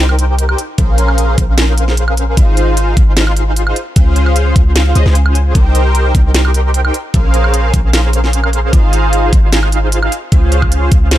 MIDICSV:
0, 0, Header, 1, 4, 480
1, 0, Start_track
1, 0, Tempo, 397351
1, 946, Time_signature, 4, 2, 24, 8
1, 13505, End_track
2, 0, Start_track
2, 0, Title_t, "Analog polysynth"
2, 0, Program_c, 0, 90
2, 0, Note_on_c, 0, 63, 80
2, 0, Note_on_c, 0, 67, 73
2, 0, Note_on_c, 0, 70, 74
2, 0, Note_on_c, 0, 72, 78
2, 0, Note_on_c, 0, 79, 91
2, 691, Note_off_c, 0, 63, 0
2, 692, Note_off_c, 0, 67, 0
2, 692, Note_off_c, 0, 70, 0
2, 692, Note_off_c, 0, 72, 0
2, 692, Note_off_c, 0, 79, 0
2, 944, Note_on_c, 0, 61, 87
2, 945, Note_on_c, 0, 72, 81
2, 946, Note_on_c, 0, 68, 78
2, 946, Note_on_c, 0, 70, 82
2, 946, Note_on_c, 0, 77, 100
2, 1638, Note_off_c, 0, 61, 0
2, 1638, Note_off_c, 0, 68, 0
2, 1638, Note_off_c, 0, 70, 0
2, 1638, Note_off_c, 0, 72, 0
2, 1638, Note_off_c, 0, 77, 0
2, 1664, Note_on_c, 0, 61, 79
2, 1664, Note_on_c, 0, 70, 76
2, 1664, Note_on_c, 0, 72, 77
2, 1664, Note_on_c, 0, 77, 96
2, 1665, Note_on_c, 0, 68, 76
2, 2837, Note_off_c, 0, 70, 0
2, 2837, Note_off_c, 0, 72, 0
2, 2838, Note_off_c, 0, 61, 0
2, 2838, Note_off_c, 0, 68, 0
2, 2838, Note_off_c, 0, 77, 0
2, 2865, Note_on_c, 0, 63, 85
2, 2865, Note_on_c, 0, 65, 78
2, 2866, Note_on_c, 0, 68, 81
2, 2866, Note_on_c, 0, 72, 82
2, 2866, Note_on_c, 0, 77, 99
2, 3558, Note_off_c, 0, 63, 0
2, 3558, Note_off_c, 0, 65, 0
2, 3558, Note_off_c, 0, 72, 0
2, 3558, Note_off_c, 0, 77, 0
2, 3559, Note_off_c, 0, 68, 0
2, 3583, Note_on_c, 0, 77, 96
2, 3584, Note_on_c, 0, 63, 88
2, 3584, Note_on_c, 0, 65, 72
2, 3584, Note_on_c, 0, 68, 77
2, 3584, Note_on_c, 0, 72, 75
2, 4531, Note_off_c, 0, 63, 0
2, 4531, Note_off_c, 0, 65, 0
2, 4531, Note_off_c, 0, 68, 0
2, 4531, Note_off_c, 0, 72, 0
2, 4531, Note_off_c, 0, 77, 0
2, 4784, Note_on_c, 0, 65, 86
2, 4785, Note_on_c, 0, 61, 88
2, 4785, Note_on_c, 0, 68, 79
2, 4785, Note_on_c, 0, 72, 83
2, 4785, Note_on_c, 0, 77, 96
2, 5478, Note_off_c, 0, 61, 0
2, 5478, Note_off_c, 0, 65, 0
2, 5478, Note_off_c, 0, 68, 0
2, 5478, Note_off_c, 0, 72, 0
2, 5478, Note_off_c, 0, 77, 0
2, 5505, Note_on_c, 0, 68, 76
2, 5505, Note_on_c, 0, 72, 74
2, 5506, Note_on_c, 0, 61, 82
2, 5506, Note_on_c, 0, 65, 76
2, 5506, Note_on_c, 0, 77, 90
2, 5963, Note_off_c, 0, 61, 0
2, 5963, Note_off_c, 0, 65, 0
2, 5963, Note_off_c, 0, 68, 0
2, 5963, Note_off_c, 0, 72, 0
2, 5963, Note_off_c, 0, 77, 0
2, 5985, Note_on_c, 0, 68, 86
2, 5986, Note_on_c, 0, 61, 95
2, 5986, Note_on_c, 0, 65, 84
2, 5986, Note_on_c, 0, 72, 83
2, 5986, Note_on_c, 0, 75, 103
2, 6081, Note_off_c, 0, 61, 0
2, 6081, Note_off_c, 0, 65, 0
2, 6081, Note_off_c, 0, 68, 0
2, 6081, Note_off_c, 0, 75, 0
2, 6082, Note_off_c, 0, 72, 0
2, 6109, Note_on_c, 0, 72, 70
2, 6110, Note_on_c, 0, 61, 79
2, 6110, Note_on_c, 0, 65, 72
2, 6110, Note_on_c, 0, 68, 68
2, 6110, Note_on_c, 0, 80, 86
2, 6677, Note_off_c, 0, 61, 0
2, 6677, Note_off_c, 0, 68, 0
2, 6677, Note_off_c, 0, 72, 0
2, 6678, Note_off_c, 0, 65, 0
2, 6678, Note_off_c, 0, 80, 0
2, 6703, Note_on_c, 0, 63, 84
2, 6703, Note_on_c, 0, 67, 78
2, 6703, Note_on_c, 0, 70, 80
2, 6703, Note_on_c, 0, 72, 82
2, 6704, Note_on_c, 0, 79, 102
2, 7397, Note_off_c, 0, 63, 0
2, 7397, Note_off_c, 0, 67, 0
2, 7397, Note_off_c, 0, 70, 0
2, 7397, Note_off_c, 0, 72, 0
2, 7397, Note_off_c, 0, 79, 0
2, 7423, Note_on_c, 0, 67, 80
2, 7423, Note_on_c, 0, 70, 77
2, 7424, Note_on_c, 0, 63, 81
2, 7424, Note_on_c, 0, 72, 77
2, 7424, Note_on_c, 0, 79, 94
2, 8371, Note_off_c, 0, 63, 0
2, 8371, Note_off_c, 0, 67, 0
2, 8371, Note_off_c, 0, 70, 0
2, 8371, Note_off_c, 0, 72, 0
2, 8371, Note_off_c, 0, 79, 0
2, 8625, Note_on_c, 0, 68, 80
2, 8626, Note_on_c, 0, 61, 86
2, 8626, Note_on_c, 0, 70, 80
2, 8626, Note_on_c, 0, 72, 83
2, 8626, Note_on_c, 0, 77, 100
2, 9318, Note_off_c, 0, 68, 0
2, 9318, Note_off_c, 0, 70, 0
2, 9318, Note_off_c, 0, 72, 0
2, 9318, Note_off_c, 0, 77, 0
2, 9319, Note_off_c, 0, 61, 0
2, 9344, Note_on_c, 0, 61, 83
2, 9344, Note_on_c, 0, 68, 74
2, 9344, Note_on_c, 0, 70, 74
2, 9344, Note_on_c, 0, 72, 78
2, 9344, Note_on_c, 0, 77, 91
2, 10517, Note_off_c, 0, 61, 0
2, 10517, Note_off_c, 0, 77, 0
2, 10518, Note_off_c, 0, 68, 0
2, 10518, Note_off_c, 0, 70, 0
2, 10518, Note_off_c, 0, 72, 0
2, 10545, Note_on_c, 0, 63, 93
2, 10545, Note_on_c, 0, 65, 85
2, 10545, Note_on_c, 0, 68, 81
2, 10545, Note_on_c, 0, 72, 79
2, 10545, Note_on_c, 0, 77, 96
2, 11238, Note_off_c, 0, 63, 0
2, 11238, Note_off_c, 0, 65, 0
2, 11238, Note_off_c, 0, 68, 0
2, 11238, Note_off_c, 0, 72, 0
2, 11238, Note_off_c, 0, 77, 0
2, 11264, Note_on_c, 0, 63, 88
2, 11264, Note_on_c, 0, 65, 75
2, 11264, Note_on_c, 0, 68, 77
2, 11264, Note_on_c, 0, 72, 74
2, 11264, Note_on_c, 0, 77, 96
2, 12211, Note_off_c, 0, 63, 0
2, 12211, Note_off_c, 0, 65, 0
2, 12211, Note_off_c, 0, 68, 0
2, 12211, Note_off_c, 0, 72, 0
2, 12211, Note_off_c, 0, 77, 0
2, 12466, Note_on_c, 0, 65, 82
2, 12466, Note_on_c, 0, 72, 79
2, 12467, Note_on_c, 0, 61, 91
2, 12467, Note_on_c, 0, 68, 77
2, 12467, Note_on_c, 0, 77, 92
2, 13159, Note_off_c, 0, 61, 0
2, 13159, Note_off_c, 0, 65, 0
2, 13159, Note_off_c, 0, 68, 0
2, 13159, Note_off_c, 0, 72, 0
2, 13159, Note_off_c, 0, 77, 0
2, 13187, Note_on_c, 0, 68, 76
2, 13187, Note_on_c, 0, 72, 76
2, 13187, Note_on_c, 0, 77, 88
2, 13188, Note_on_c, 0, 61, 83
2, 13188, Note_on_c, 0, 65, 74
2, 13505, Note_off_c, 0, 61, 0
2, 13505, Note_off_c, 0, 65, 0
2, 13505, Note_off_c, 0, 68, 0
2, 13505, Note_off_c, 0, 72, 0
2, 13505, Note_off_c, 0, 77, 0
2, 13505, End_track
3, 0, Start_track
3, 0, Title_t, "808-style bass"
3, 0, Program_c, 1, 38
3, 0, Note_on_c, 1, 36, 99
3, 670, Note_off_c, 1, 36, 0
3, 946, Note_on_c, 1, 34, 101
3, 1643, Note_off_c, 1, 34, 0
3, 1666, Note_on_c, 1, 34, 97
3, 2843, Note_off_c, 1, 34, 0
3, 2867, Note_on_c, 1, 32, 100
3, 3563, Note_off_c, 1, 32, 0
3, 3587, Note_on_c, 1, 32, 99
3, 4509, Note_off_c, 1, 32, 0
3, 4786, Note_on_c, 1, 37, 102
3, 5483, Note_off_c, 1, 37, 0
3, 5507, Note_on_c, 1, 37, 103
3, 5963, Note_off_c, 1, 37, 0
3, 5986, Note_on_c, 1, 37, 98
3, 6087, Note_off_c, 1, 37, 0
3, 6110, Note_on_c, 1, 37, 100
3, 6682, Note_off_c, 1, 37, 0
3, 6706, Note_on_c, 1, 36, 105
3, 7403, Note_off_c, 1, 36, 0
3, 7426, Note_on_c, 1, 36, 99
3, 8349, Note_off_c, 1, 36, 0
3, 8626, Note_on_c, 1, 34, 97
3, 9323, Note_off_c, 1, 34, 0
3, 9347, Note_on_c, 1, 34, 102
3, 10523, Note_off_c, 1, 34, 0
3, 10547, Note_on_c, 1, 32, 102
3, 11244, Note_off_c, 1, 32, 0
3, 11267, Note_on_c, 1, 32, 98
3, 12190, Note_off_c, 1, 32, 0
3, 12467, Note_on_c, 1, 37, 104
3, 13164, Note_off_c, 1, 37, 0
3, 13187, Note_on_c, 1, 37, 99
3, 13505, Note_off_c, 1, 37, 0
3, 13505, End_track
4, 0, Start_track
4, 0, Title_t, "Drums"
4, 111, Note_on_c, 9, 76, 64
4, 226, Note_on_c, 9, 42, 69
4, 232, Note_off_c, 9, 76, 0
4, 346, Note_off_c, 9, 42, 0
4, 466, Note_on_c, 9, 42, 87
4, 587, Note_off_c, 9, 42, 0
4, 591, Note_on_c, 9, 76, 76
4, 706, Note_on_c, 9, 42, 66
4, 712, Note_off_c, 9, 76, 0
4, 827, Note_off_c, 9, 42, 0
4, 944, Note_on_c, 9, 42, 84
4, 947, Note_on_c, 9, 36, 125
4, 1065, Note_off_c, 9, 42, 0
4, 1068, Note_off_c, 9, 36, 0
4, 1185, Note_on_c, 9, 42, 72
4, 1305, Note_off_c, 9, 42, 0
4, 1310, Note_on_c, 9, 76, 59
4, 1425, Note_on_c, 9, 42, 89
4, 1431, Note_off_c, 9, 76, 0
4, 1546, Note_off_c, 9, 42, 0
4, 1665, Note_on_c, 9, 42, 73
4, 1667, Note_on_c, 9, 36, 105
4, 1786, Note_off_c, 9, 42, 0
4, 1787, Note_off_c, 9, 36, 0
4, 1904, Note_on_c, 9, 38, 127
4, 1904, Note_on_c, 9, 42, 91
4, 2025, Note_off_c, 9, 38, 0
4, 2025, Note_off_c, 9, 42, 0
4, 2145, Note_on_c, 9, 42, 71
4, 2266, Note_off_c, 9, 42, 0
4, 2271, Note_on_c, 9, 38, 36
4, 2385, Note_on_c, 9, 42, 88
4, 2391, Note_off_c, 9, 38, 0
4, 2506, Note_off_c, 9, 42, 0
4, 2511, Note_on_c, 9, 76, 73
4, 2626, Note_on_c, 9, 42, 64
4, 2631, Note_off_c, 9, 76, 0
4, 2747, Note_off_c, 9, 42, 0
4, 2866, Note_on_c, 9, 42, 83
4, 2867, Note_on_c, 9, 36, 119
4, 2987, Note_off_c, 9, 36, 0
4, 2987, Note_off_c, 9, 42, 0
4, 3106, Note_on_c, 9, 42, 66
4, 3227, Note_off_c, 9, 42, 0
4, 3347, Note_on_c, 9, 42, 89
4, 3467, Note_off_c, 9, 42, 0
4, 3586, Note_on_c, 9, 42, 68
4, 3587, Note_on_c, 9, 36, 113
4, 3707, Note_off_c, 9, 36, 0
4, 3707, Note_off_c, 9, 42, 0
4, 3825, Note_on_c, 9, 38, 127
4, 3825, Note_on_c, 9, 42, 84
4, 3946, Note_off_c, 9, 38, 0
4, 3946, Note_off_c, 9, 42, 0
4, 3951, Note_on_c, 9, 76, 60
4, 4066, Note_on_c, 9, 42, 67
4, 4072, Note_off_c, 9, 76, 0
4, 4186, Note_off_c, 9, 42, 0
4, 4306, Note_on_c, 9, 42, 86
4, 4427, Note_off_c, 9, 42, 0
4, 4430, Note_on_c, 9, 76, 72
4, 4545, Note_on_c, 9, 42, 67
4, 4551, Note_off_c, 9, 76, 0
4, 4666, Note_off_c, 9, 42, 0
4, 4784, Note_on_c, 9, 42, 76
4, 4787, Note_on_c, 9, 36, 124
4, 4905, Note_off_c, 9, 42, 0
4, 4908, Note_off_c, 9, 36, 0
4, 5025, Note_on_c, 9, 42, 65
4, 5146, Note_off_c, 9, 42, 0
4, 5151, Note_on_c, 9, 76, 59
4, 5264, Note_on_c, 9, 42, 77
4, 5271, Note_off_c, 9, 76, 0
4, 5385, Note_off_c, 9, 42, 0
4, 5506, Note_on_c, 9, 42, 66
4, 5507, Note_on_c, 9, 36, 112
4, 5626, Note_off_c, 9, 42, 0
4, 5627, Note_off_c, 9, 36, 0
4, 5745, Note_on_c, 9, 38, 127
4, 5745, Note_on_c, 9, 42, 80
4, 5866, Note_off_c, 9, 38, 0
4, 5866, Note_off_c, 9, 42, 0
4, 5985, Note_on_c, 9, 42, 65
4, 6105, Note_off_c, 9, 42, 0
4, 6110, Note_on_c, 9, 38, 36
4, 6224, Note_on_c, 9, 42, 79
4, 6231, Note_off_c, 9, 38, 0
4, 6344, Note_off_c, 9, 42, 0
4, 6350, Note_on_c, 9, 76, 72
4, 6465, Note_on_c, 9, 42, 62
4, 6471, Note_off_c, 9, 76, 0
4, 6585, Note_off_c, 9, 42, 0
4, 6705, Note_on_c, 9, 42, 74
4, 6706, Note_on_c, 9, 36, 112
4, 6826, Note_off_c, 9, 42, 0
4, 6827, Note_off_c, 9, 36, 0
4, 6945, Note_on_c, 9, 42, 63
4, 7065, Note_off_c, 9, 42, 0
4, 7185, Note_on_c, 9, 42, 79
4, 7306, Note_off_c, 9, 42, 0
4, 7425, Note_on_c, 9, 42, 60
4, 7426, Note_on_c, 9, 36, 105
4, 7546, Note_off_c, 9, 42, 0
4, 7547, Note_off_c, 9, 36, 0
4, 7665, Note_on_c, 9, 38, 127
4, 7665, Note_on_c, 9, 42, 79
4, 7785, Note_off_c, 9, 38, 0
4, 7785, Note_off_c, 9, 42, 0
4, 7790, Note_on_c, 9, 76, 65
4, 7905, Note_on_c, 9, 42, 64
4, 7911, Note_off_c, 9, 76, 0
4, 8026, Note_off_c, 9, 42, 0
4, 8145, Note_on_c, 9, 42, 79
4, 8266, Note_off_c, 9, 42, 0
4, 8271, Note_on_c, 9, 76, 78
4, 8386, Note_on_c, 9, 42, 59
4, 8392, Note_off_c, 9, 76, 0
4, 8507, Note_off_c, 9, 42, 0
4, 8625, Note_on_c, 9, 42, 75
4, 8626, Note_on_c, 9, 36, 115
4, 8745, Note_off_c, 9, 42, 0
4, 8747, Note_off_c, 9, 36, 0
4, 8865, Note_on_c, 9, 42, 64
4, 8985, Note_off_c, 9, 42, 0
4, 8990, Note_on_c, 9, 76, 61
4, 9104, Note_on_c, 9, 42, 80
4, 9111, Note_off_c, 9, 76, 0
4, 9225, Note_off_c, 9, 42, 0
4, 9345, Note_on_c, 9, 42, 61
4, 9347, Note_on_c, 9, 36, 97
4, 9466, Note_off_c, 9, 42, 0
4, 9467, Note_off_c, 9, 36, 0
4, 9585, Note_on_c, 9, 38, 114
4, 9585, Note_on_c, 9, 42, 80
4, 9706, Note_off_c, 9, 38, 0
4, 9706, Note_off_c, 9, 42, 0
4, 9825, Note_on_c, 9, 42, 66
4, 9946, Note_off_c, 9, 42, 0
4, 9952, Note_on_c, 9, 38, 34
4, 10066, Note_on_c, 9, 42, 84
4, 10073, Note_off_c, 9, 38, 0
4, 10187, Note_off_c, 9, 42, 0
4, 10191, Note_on_c, 9, 76, 83
4, 10307, Note_on_c, 9, 42, 63
4, 10312, Note_off_c, 9, 76, 0
4, 10427, Note_off_c, 9, 42, 0
4, 10547, Note_on_c, 9, 36, 113
4, 10547, Note_on_c, 9, 42, 80
4, 10667, Note_off_c, 9, 42, 0
4, 10668, Note_off_c, 9, 36, 0
4, 10787, Note_on_c, 9, 42, 63
4, 10908, Note_off_c, 9, 42, 0
4, 11027, Note_on_c, 9, 42, 81
4, 11148, Note_off_c, 9, 42, 0
4, 11267, Note_on_c, 9, 36, 105
4, 11267, Note_on_c, 9, 42, 68
4, 11388, Note_off_c, 9, 36, 0
4, 11388, Note_off_c, 9, 42, 0
4, 11506, Note_on_c, 9, 38, 115
4, 11506, Note_on_c, 9, 42, 82
4, 11627, Note_off_c, 9, 38, 0
4, 11627, Note_off_c, 9, 42, 0
4, 11632, Note_on_c, 9, 76, 67
4, 11747, Note_on_c, 9, 42, 65
4, 11753, Note_off_c, 9, 76, 0
4, 11867, Note_off_c, 9, 42, 0
4, 11986, Note_on_c, 9, 42, 80
4, 12107, Note_off_c, 9, 42, 0
4, 12111, Note_on_c, 9, 76, 83
4, 12227, Note_on_c, 9, 42, 64
4, 12232, Note_off_c, 9, 76, 0
4, 12347, Note_off_c, 9, 42, 0
4, 12467, Note_on_c, 9, 42, 80
4, 12468, Note_on_c, 9, 36, 115
4, 12588, Note_off_c, 9, 42, 0
4, 12589, Note_off_c, 9, 36, 0
4, 12707, Note_on_c, 9, 42, 70
4, 12828, Note_off_c, 9, 42, 0
4, 12832, Note_on_c, 9, 76, 65
4, 12833, Note_on_c, 9, 36, 60
4, 12947, Note_on_c, 9, 42, 83
4, 12953, Note_off_c, 9, 76, 0
4, 12954, Note_off_c, 9, 36, 0
4, 13068, Note_off_c, 9, 42, 0
4, 13186, Note_on_c, 9, 42, 65
4, 13188, Note_on_c, 9, 36, 102
4, 13307, Note_off_c, 9, 42, 0
4, 13309, Note_off_c, 9, 36, 0
4, 13425, Note_on_c, 9, 38, 114
4, 13425, Note_on_c, 9, 42, 85
4, 13505, Note_off_c, 9, 38, 0
4, 13505, Note_off_c, 9, 42, 0
4, 13505, End_track
0, 0, End_of_file